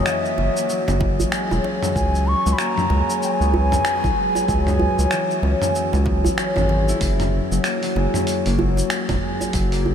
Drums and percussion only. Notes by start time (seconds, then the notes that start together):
0.06 finger snap, cabasa
0.25 cabasa
0.38 djembe slap, djembe tone
0.57 cabasa
0.69 cabasa
0.88 mid tom, djembe slap, cabasa
1.01 kick, djembe slap
1.20 djembe bass, cabasa
1.32 finger snap, cabasa
1.51 djembe tone, cabasa
1.64 djembe slap
1.83 mid tom, cabasa
1.96 kick, cabasa
2.15 cabasa
2.47 cabasa
2.59 finger snap, cabasa
2.78 mid tom, cabasa
2.90 djembe slap
3.10 cabasa
3.23 cabasa
3.41 cabasa
3.54 djembe bass
3.72 mid tom, djembe slap, cabasa
3.85 finger snap, cabasa
4.04 kick, djembe tone, cabasa
4.35 djembe tone, cabasa
4.48 kick, cabasa
4.67 mid tom, cabasa
4.79 djembe bass
4.99 cabasa
5.11 finger snap, cabasa
5.31 cabasa
5.43 djembe slap, djembe tone
5.62 mid tom, cabasa
5.75 cabasa
5.93 djembe slap, cabasa
6.06 kick, djembe slap
6.24 djembe bass, cabasa
6.38 finger snap, cabasa
6.56 mid tom, djembe tone, cabasa
6.69 djembe slap
6.89 cabasa
7.01 kick, open hi-hat, cabasa
7.20 mid tom, open hi-hat, cabasa
7.52 cabasa
7.64 finger snap, open hi-hat, cabasa
7.83 open hi-hat, cabasa
7.96 djembe slap
8.14 mid tom, cabasa
8.27 open hi-hat, cabasa
8.46 open hi-hat, cabasa
8.59 djembe bass
8.77 djembe slap, cabasa
8.90 finger snap, open hi-hat, cabasa
9.09 kick, mid tom, open hi-hat, djembe tone, cabasa
9.41 djembe tone, cabasa
9.53 kick, open hi-hat, cabasa
9.72 open hi-hat, cabasa
9.86 djembe bass